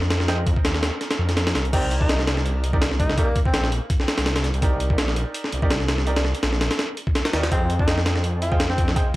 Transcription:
Already playing: F2 A#4 A#5
0.02 snare
0.10 snare, closed hi-hat
0.20 snare
0.28 G#4 C5 D#5 G5, snare, closed hi-hat
0.47 kick, closed hi-hat
0.56 kick
0.65 D#2, snare, closed hi-hat
0.74 snare
0.83 snare, closed hi-hat
1.01 snare, closed hi-hat
1.11 snare, closed hi-hat
1.19 F2
1.29 snare, closed hi-hat
1.37 snare, closed hi-hat
1.47 snare, closed hi-hat
1.55 C2, snare, closed hi-hat
1.65 closed hi-hat
1.73 C2 C4 D#4 G4 A#4 D5, kick, closed hi-hat, crash
1.91 closed hi-hat
2.01 D#4, kick
2.09 snare, closed hi-hat
2.19 snare
2.27 snare, closed hi-hat
2.37 snare
2.46 closed hi-hat
2.64 closed hi-hat
2.73 D#4 G4 A#4 D5, kick
2.82 snare, closed hi-hat
2.92 snare
3.00 D#4, kick, closed hi-hat
3.10 snare
3.18 A#3 D#4 G4 A#4 D5, kick, closed hi-hat
3.36 kick, closed hi-hat
3.46 C4, kick
3.54 A#1, snare, closed hi-hat
3.64 snare
3.72 closed hi-hat
3.90 kick, closed hi-hat
4.00 snare
4.08 snare, closed hi-hat
4.18 C2, snare, closed hi-hat
4.26 snare, closed hi-hat
4.36 snare, closed hi-hat
4.44 snare, closed hi-hat
4.54 C2, closed hi-hat
4.62 D#4 G4 A#4 D5, kick, closed hi-hat
4.80 closed hi-hat
4.90 kick
4.98 A#1, snare, closed hi-hat
5.08 snare
5.16 closed hi-hat
5.34 closed hi-hat
5.44 snare
5.52 C2, closed hi-hat
5.62 D#4 G4 A#4 D5, kick
5.71 snare, closed hi-hat
5.80 snare
5.88 snare, closed hi-hat
5.98 snare
6.07 D#4 G4 A#4 D5, closed hi-hat
6.16 snare, closed hi-hat
6.25 snare
6.35 closed hi-hat
6.43 A#1, snare, closed hi-hat
6.53 snare
6.61 snare, closed hi-hat
6.71 snare, closed hi-hat
6.79 snare, closed hi-hat
6.97 closed hi-hat
7.07 kick
7.15 snare, closed hi-hat
7.25 snare, closed hi-hat
7.33 D#2 D#4 G4 A#4 D5, snare, closed hi-hat
7.43 snare, closed hi-hat
7.51 F2 C4 G#4 C5 D#5 G5, kick, closed hi-hat
7.70 closed hi-hat
7.79 D#4, kick
7.88 snare, closed hi-hat
7.98 snare
8.06 snare, closed hi-hat
8.16 snare
8.24 closed hi-hat
8.42 F4, closed hi-hat
8.52 G#4 C5 D#5 G5, kick
8.60 snare, closed hi-hat
8.70 C4, snare
8.78 kick, closed hi-hat
8.88 snare
8.96 G#4 C5 D#5 G5, kick, closed hi-hat

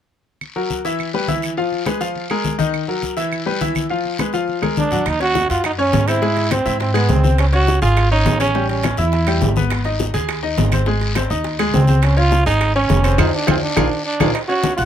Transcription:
0.41 high conga, long guiro, claves
0.56 F#3 F#4 A#4, high conga
0.70 high conga, short guiro
0.85 E3 E4 E5, high conga, short guiro
0.99 high conga, long guiro, claves
1.14 G3 G4 B4, high conga
1.28 E3 E4 E5, high conga, short guiro
1.42 short guiro, claves
1.57 F3 F4 F5, high conga, long guiro
1.72 high conga
1.86 G#3 G#4 B4, high conga, short guiro, claves
2.00 F3 F4 F5, high conga, short guiro
2.15 high conga, long guiro
2.30 G#3 G#4 A#4, high conga, claves
2.44 high conga, short guiro
2.58 D#3 D#4 D#5, high conga, short guiro
2.74 high conga, long guiro, claves
2.88 F#3 F#4 A#4, high conga
3.03 high conga, short guiro
3.17 E3 E4 E5, high conga, short guiro
3.32 high conga, long guiro, claves
3.46 G3 G4 B4, high conga
3.61 E3 E4 E5, high conga, short guiro
3.75 high conga, short guiro, claves
3.90 F3 F4 F5, high conga, long guiro
4.05 high conga
4.18 G#3 G#4 B4, high conga, short guiro, claves
4.33 F3 F4 F5, high conga, short guiro
4.48 high conga, long guiro
4.62 G#3 G#4 A#4, high conga, claves
4.76 D4, high conga, short guiro
4.91 F#3 F#4 F#5, low conga, short guiro
5.06 D#2 D#4, high bongo, high timbale, long guiro, claves
5.20 C#4 F#4 C#5, high bongo, high conga, high timbale
5.35 high bongo, high conga, low timbale, short guiro
5.49 F#2 F4 F#4 F#5, high conga, high timbale, short guiro
5.64 D#4, high bongo, high conga, high timbale, long guiro, claves
5.78 C#4 C#5, high bongo, high conga
5.93 G#2, high bongo, low bongo, high conga, high timbale, low timbale, short guiro
6.08 C4 E4 C5, high bongo, high timbale, short guiro, claves
6.22 G#3 G#4, high bongo, high conga, long guiro
6.37 high bongo, high conga, high timbale
6.51 C4 C5, high bongo, high conga, high timbale, low timbale, short guiro, claves
6.66 G#2 E4 E5, high conga, short guiro
6.80 C4, high bongo, high conga, high timbale, long guiro
6.94 G#3 B3 G#4, high bongo, high conga, high timbale, claves
7.09 C#2 C4, high bongo, low bongo, high conga, low timbale, short guiro
7.24 C4 C5, high bongo, high conga, short guiro
7.38 C#4, high bongo, high conga, high timbale, long guiro, claves
7.53 C#4 F#4 C#5, high bongo, high conga, high timbale
7.67 high bongo, high conga, low timbale, short guiro
7.82 G#1 F4 G#4 G#5, high conga, high timbale, short guiro
7.96 high bongo, high conga, high timbale, long guiro, claves
8.11 C#4 D#4 C#5, high bongo, high conga
8.26 A1, high bongo, low bongo, high conga, high timbale, low timbale, short guiro
8.40 C#4 C#5, high bongo, high timbale, short guiro, claves
8.54 G3 G4, high bongo, high conga, long guiro
8.69 C#4, high bongo, high conga, high timbale
8.83 C#4 C#5, high bongo, high conga, high timbale, low timbale, short guiro, claves
8.97 E2 E4 E5, high conga, short guiro
9.12 high bongo, high conga, high timbale, long guiro
9.27 G3 G4, high bongo, high conga, high timbale, claves
9.41 G#1, high bongo, low bongo, high conga, low timbale, short guiro
9.56 B3 B4, high bongo, high conga, short guiro
9.70 high bongo, high timbale, long guiro, claves
9.85 D#4 D#5, high bongo, high conga, high timbale
9.99 high bongo, high conga, low timbale, short guiro
10.14 D#2 G#4 G#5, high conga, high timbale, short guiro
10.28 high bongo, high conga, high timbale, long guiro, claves
10.43 D#4 D#5, high bongo, high conga
10.57 G#1, high bongo, low bongo, high conga, high timbale, low timbale, short guiro
10.72 C4 C5, high bongo, high conga, high timbale, short guiro, claves
10.86 G#3 G#4, high bongo, long guiro
11.01 high bongo, high conga, high timbale
11.15 C4 C5, high bongo, high conga, high timbale, low timbale, short guiro, claves
11.30 D#2 D#4 D#5, high conga, short guiro
11.44 high bongo, high conga, high timbale, long guiro
11.59 G#3 G#4, high bongo, high conga, high timbale, claves
11.74 C#2 C4, high bongo, low bongo, high conga, low timbale, short guiro
11.88 C4 C5, high bongo, high conga, short guiro
12.02 C#4, high bongo, high timbale, long guiro, claves
12.17 C#4 F4 C#5, high bongo, high conga, high timbale
12.31 high bongo, high conga, low timbale, short guiro
12.46 G#1 D#4 G#4 G#5, high conga, high timbale, short guiro
12.61 high bongo, high conga, high timbale, long guiro, claves
12.76 C#4 C#5, high bongo, high conga
12.89 F1, high bongo, low bongo, high conga, high timbale, low timbale, short guiro
13.03 C4 C5, high bongo, high timbale, short guiro, claves
13.18 F2 D#4 F4 G#4 C5, low bongo, high conga, high timbale, long guiro, claves
13.35 D4
13.47 F2 C4 F4 G#4 C5, low bongo, high conga, high timbale, long guiro, claves
13.63 D4
13.76 A#1 F4 G#4 A#4, low bongo, high conga, high timbale, long guiro, claves
14.05 D4
14.20 A#1 F4 G#4 A#4, low bongo, high conga, high timbale, long guiro, claves
14.34 D#4, high bongo, high conga, high timbale, long guiro, claves
14.48 C#4 F#4 C#5 C#6, high bongo, high conga
14.63 high bongo, high conga, high timbale, low timbale, short guiro
14.77 A#1 F4 F#4 F#5 F#6, high bongo, high conga, short guiro

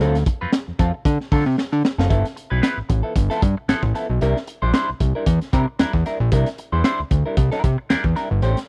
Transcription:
0.00 D2 F#3 C4 F4 A4, closed hi-hat
0.15 snare, closed hi-hat
0.26 muted clean electric guitar stroke, kick, closed hi-hat
0.41 F2 F#3 C4 F4 B4
0.52 snare, closed hi-hat
0.68 F2
0.79 F2 F#3 C4 F4 A4, kick, closed hi-hat
0.94 muted clean electric guitar stroke
1.05 D3, muted clean electric guitar stroke, kick, closed hi-hat
1.21 snare
1.32 D3 F#3 C4 F4 A4, kick, open hi-hat
1.46 C3, muted clean electric guitar stroke
1.58 muted clean electric guitar stroke, snare
1.72 D3, muted clean electric guitar stroke
1.85 snare
1.98 F#1 F#3 C4 F4 A4, snare
2.09 G1 F3 B3 E4 A4, kick, closed hi-hat
2.25 snare, closed hi-hat
2.36 muted clean electric guitar stroke, closed hi-hat
2.50 B1 F3 B3 E4 B4
2.62 F3 B3 E4 B4, snare, closed hi-hat
2.78 A1
2.89 A1, muted clean electric guitar stroke, kick, closed hi-hat
3.03 F3 B3 E4 A4
3.16 G1, kick, closed hi-hat
3.30 F3 B3 E4 A4, snare, closed hi-hat
3.42 G2, kick, closed hi-hat
3.57 muted clean electric guitar stroke
3.68 A1 F3 B3 E4 A4, snare, closed hi-hat
3.83 A1, muted clean electric guitar stroke, kick
3.94 F3 B3 E4 A4, snare, closed hi-hat
4.10 B1
4.21 C2 G3 D4 E4 A#4, closed hi-hat
4.37 snare
4.47 muted clean electric guitar stroke, closed hi-hat
4.62 A#1 G3 D4 E4 C5
4.73 G3 D4 E4 C5, snare, closed hi-hat
4.89 C2
5.00 C2, muted clean electric guitar stroke, kick, closed hi-hat
5.15 G3 D4 E4 A#4
5.26 E2, kick, closed hi-hat
5.41 snare, closed hi-hat
5.53 C3 G3 D4 E4 A#4, kick, closed hi-hat
5.79 E2 G3 D4 E4 A#4, snare, closed hi-hat
5.93 E2, muted clean electric guitar stroke, kick
6.05 G3 D4 E4 A#4, snare, closed hi-hat
6.20 A#1
6.32 C2 G3 D4 E4 A#4, kick, closed hi-hat
6.46 snare, closed hi-hat
6.58 muted clean electric guitar stroke, closed hi-hat
6.72 E2 G3 D4 E4 C5
6.84 G3 D4 E4 C5, snare, closed hi-hat
6.99 D2
7.11 D2, muted clean electric guitar stroke, kick, closed hi-hat
7.26 G3 D4 E4 A#4
7.37 C2, kick, closed hi-hat
7.52 G3 D4 E4 A#4, snare, closed hi-hat
7.63 C3, muted clean electric guitar stroke, kick, closed hi-hat
7.78 muted clean electric guitar stroke
7.90 E2 G3 D4 E4 A#4, snare, closed hi-hat
8.04 E2, muted clean electric guitar stroke, kick
8.15 G3 D4 E4 A#4, snare, closed hi-hat
8.31 G1
8.42 A1 A3 C#4 G4 C5, closed hi-hat
8.57 snare, closed hi-hat

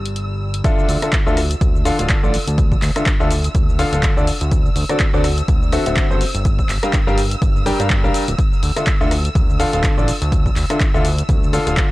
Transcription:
Already playing: G1 G2 A#3 F4 G4 D5 A5 E6
0.06 closed hi-hat
0.16 closed hi-hat
0.54 closed hi-hat
0.64 D3 D4 F4 A4 E5 E6, kick, closed hi-hat, shaker
0.79 shaker
0.89 D2, open hi-hat, shaker
1.02 D3 D4 F4 A4 E5, cross-stick, closed hi-hat, shaker
1.13 kick, clap, closed hi-hat, shaker
1.27 D2 D3 D4 F4 A4 E5, shaker
1.37 cross-stick, open hi-hat, shaker
1.51 closed hi-hat, shaker
1.61 D2, kick, closed hi-hat, shaker
1.76 shaker
1.85 D3 D4 F4 A4 F5, open hi-hat, shaker
1.99 D1 D3 D4 F4 A4 F5, closed hi-hat, shaker
2.10 kick, clap, closed hi-hat, shaker
2.23 A1 D3 D4 F4 A4 D5, shaker
2.34 open hi-hat, shaker
2.47 D2, closed hi-hat, shaker
2.58 kick, closed hi-hat, shaker
2.72 kick, shaker
2.82 D2, clap, open hi-hat, shaker
2.96 D3 D4 F4 A4 E5, cross-stick, closed hi-hat, shaker
3.06 kick, clap, closed hi-hat, shaker
3.20 D2 D3 D4 F4 A4 E5, shaker
3.31 open hi-hat, shaker
3.44 closed hi-hat, shaker
3.55 D2, kick, closed hi-hat, shaker
3.69 shaker
3.79 D3 D4 F4 A4 F5, open hi-hat, shaker
3.93 D1 D3 D4 F4 A4 F5, closed hi-hat, shaker
4.03 kick, clap, closed hi-hat, shaker
4.17 D2 D3 D4 F4 A4 D5, shaker
4.27 open hi-hat, shaker
4.41 D2, closed hi-hat, shaker
4.51 kick, closed hi-hat, shaker
4.66 shaker
4.76 D2, open hi-hat, shaker
4.89 D3 C4 F#4 A4 D5, cross-stick, closed hi-hat, shaker
5.00 kick, clap, closed hi-hat, shaker
5.14 D2 D3 C4 F#4 A4 D5, shaker
5.24 cross-stick, open hi-hat, shaker
5.38 closed hi-hat, shaker
5.48 D2, kick, closed hi-hat, shaker
5.63 shaker
5.72 D3 C4 F#4 A4 E5, open hi-hat, shaker
5.86 D1 D3 C4 F#4 A4 E5, closed hi-hat, shaker
5.96 kick, clap, closed hi-hat, shaker
6.10 G1 C4 F#4 A4 C5, shaker
6.21 open hi-hat, shaker
6.34 G1, closed hi-hat, shaker
6.45 kick, closed hi-hat, shaker
6.59 kick, shaker
6.69 G1, clap, open hi-hat, shaker
6.83 G3 D4 G4 A#4 F5, cross-stick, closed hi-hat, shaker
6.93 kick, clap, closed hi-hat, shaker
7.07 G1 G3 D4 G4 A#4 F5, shaker
7.18 open hi-hat, shaker
7.31 closed hi-hat, shaker
7.42 G1, kick, closed hi-hat, shaker
7.56 shaker
7.66 G3 D4 G4 A#4 G5, open hi-hat, shaker
7.80 G2 G3 D4 G4 A#4 F5, closed hi-hat, shaker
7.90 kick, clap, closed hi-hat, shaker
8.04 G1 G3 D4 G4 A#4 F5, shaker
8.14 open hi-hat, shaker
8.28 D1, closed hi-hat, shaker
8.39 kick, closed hi-hat, shaker
8.53 shaker
8.63 D2, open hi-hat, shaker
8.76 D3 D4 F4 A4 E5, cross-stick, closed hi-hat, shaker
8.87 kick, clap, closed hi-hat, shaker
9.01 D2 D3 D4 F4 A4 E5, shaker
9.11 cross-stick, open hi-hat, shaker
9.25 closed hi-hat, shaker
9.35 D2, kick, closed hi-hat, shaker
9.50 shaker
9.60 D3 D4 F4 A4 F5, open hi-hat, shaker
9.73 D1 D3 D4 F4 A4 F5, closed hi-hat, shaker
9.84 kick, clap, closed hi-hat, shaker
9.97 A1 D3 D4 F4 A4 D5, shaker
10.08 open hi-hat, shaker
10.22 D2, closed hi-hat, shaker
10.32 kick, closed hi-hat, shaker
10.46 kick, shaker
10.56 D2, clap, open hi-hat, shaker
10.70 D3 D4 F4 A4 E5, cross-stick, closed hi-hat, shaker
10.81 kick, clap, closed hi-hat, shaker
10.94 D2 D3 D4 F4 A4 E5, shaker
11.05 open hi-hat, shaker
11.19 closed hi-hat, shaker
11.29 D2, kick, closed hi-hat, shaker
11.43 shaker
11.53 D3 D4 F4 A4 F5, open hi-hat, shaker
11.67 D1 D3 D4 F4 A4 F5, closed hi-hat, shaker
11.77 kick, clap, closed hi-hat, shaker

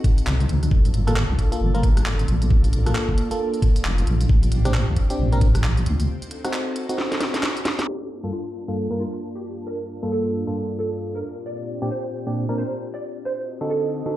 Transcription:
Already playing: C4 D#4 F#4 A4
0.04 kick, closed hi-hat
0.18 closed hi-hat
0.27 C2, clap
0.40 closed hi-hat
0.49 D2, closed hi-hat
0.63 cross-stick, closed hi-hat
0.71 G1 A#3 D4 F4, kick
0.85 closed hi-hat
0.94 closed hi-hat
1.07 A#3 F4 A4, cross-stick, closed hi-hat
1.16 clap
1.30 C2
1.39 kick, closed hi-hat
1.52 A#3 F4 A4, closed hi-hat
1.61 G1
1.74 A#3 F4 A#4, closed hi-hat
1.83 kick, closed hi-hat
1.97 cross-stick, closed hi-hat
2.06 clap
2.19 closed hi-hat
2.28 A#1, closed hi-hat
2.42 closed hi-hat
2.50 kick
2.64 closed hi-hat
2.73 closed hi-hat
2.86 A#3 F4 A4, cross-stick, closed hi-hat
2.95 clap
3.09 C2, kick
3.18 closed hi-hat
3.31 A#3 F4 A4, closed hi-hat
3.54 closed hi-hat
3.62 kick, closed hi-hat
3.76 closed hi-hat
3.85 F1, clap
3.98 closed hi-hat
4.07 A#1 C4 G4, closed hi-hat
4.21 closed hi-hat
4.29 A#1, kick
4.43 closed hi-hat
4.52 closed hi-hat
4.65 C4 D4 G4, cross-stick, closed hi-hat
4.74 clap
4.88 D2
4.96 kick, closed hi-hat
5.10 C4 D4 G4, closed hi-hat
5.19 A#1
5.32 C4 D4 A#4, closed hi-hat
5.41 kick, closed hi-hat
5.55 cross-stick, closed hi-hat
5.64 clap
5.77 closed hi-hat
5.86 D2, closed hi-hat
6.00 closed hi-hat
6.09 D#4 F#4 A4
6.22 closed hi-hat
6.31 closed hi-hat
6.45 C4 D#4 F#4, cross-stick, closed hi-hat
6.53 clap
6.76 closed hi-hat
6.89 C4 D#4 F#4, closed hi-hat
6.98 snare
7.12 snare, closed hi-hat
7.21 snare, closed hi-hat
7.34 snare, closed hi-hat
7.43 snare, clap
7.57 closed hi-hat
7.65 snare, closed hi-hat
7.79 snare, closed hi-hat
7.88 G2 A#3 D4 F4 G4 A5
8.24 G2 A#3 F4 A4
8.32 F4
8.68 G2 A#3 F4 A4
8.91 G2 A#3 F4 A#4
9.00 F4
9.35 G4
9.67 A#4
10.03 G2 A#3 F4 A4
10.12 A4
10.47 G2 A#3 F4 A4
10.79 A4
11.15 A#4
11.24 A#2 C4 G4
11.46 D5
11.82 A#2 C4 D4 G4
11.91 C5
12.27 A#2 C4 D4 G4
12.49 A#2 C4 D4 A#4
12.58 C5
12.94 D5
13.25 C4 F#4 C5 D#5 A5
13.61 D3 C4 D#4 F#4 A4
13.70 A4
14.06 D3 C4 D#4 F#4 A4

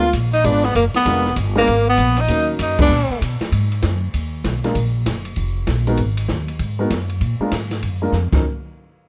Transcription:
Already playing: D2 F4
0.13 A#1, kick, hi-hat pedal, ride
0.33 D#4, ride
0.44 G#1 G#3 B3 D4 F4 B4, kick, ride
0.63 B3, snare
0.75 F#1 A#3, kick, hi-hat pedal, ride
0.94 B3, muted upright bass stroke, snare, ride
1.05 F1 G#3 B3 D4 F4 A#4, kick, ride
1.25 snare
1.36 G1, kick, hi-hat pedal, ride
1.55 G#3 A#3 B3 D4 F4 A#4, snare
1.67 G#1, kick, ride
1.88 B3
1.98 A#1, kick, hi-hat pedal, ride
2.17 D#4, ride
2.28 D#2 F#3 A#3 C#4 D#4 A#4, kick, ride
2.59 F#2 D#4, kick, hi-hat pedal, ride
2.79 G#3 B3 D4 F4 B4, kick, crash
2.89 A#2
3.10 muted upright bass stroke
3.21 B2, kick, hi-hat pedal, ride
3.41 muted upright bass stroke, snare, ride
3.52 G#2, kick, ride
3.72 ride
3.82 F#2, kick, snare, hi-hat pedal, ride
4.14 D#2, kick, ride
4.44 B1, kick, snare, hi-hat pedal, ride
4.64 G#3 A#3 D4 F4 A#4, snare, ride
4.75 A#1, kick, ride
5.06 F#1, kick, snare, hi-hat pedal, ride
5.25 ride
5.36 F1, kick, ride
5.67 A#1, kick, snare, hi-hat pedal, ride
5.87 G#3 B3 D#4 F#4 A#4, ride
5.97 G#1, kick, ride
6.17 ride
6.28 D#2, kick, snare, hi-hat pedal
6.48 ride
6.59 G#2, kick, ride
6.79 G#3 B3 D#4 F#4 A#4
6.90 F#2, kick, snare, hi-hat pedal, ride
7.09 ride
7.21 A#2, kick, ride
7.40 G#3 A#3 D4 F4 A#4, muted upright bass stroke
7.51 G#2, kick, snare, hi-hat pedal, ride
7.71 snare, ride
7.82 F#2, kick, ride
8.02 G#3 A#3 D4 F4 A#4
8.12 F2, snare, hi-hat pedal
8.32 D#2 F#3 C#4 D#4 A#4, kick, snare, crash

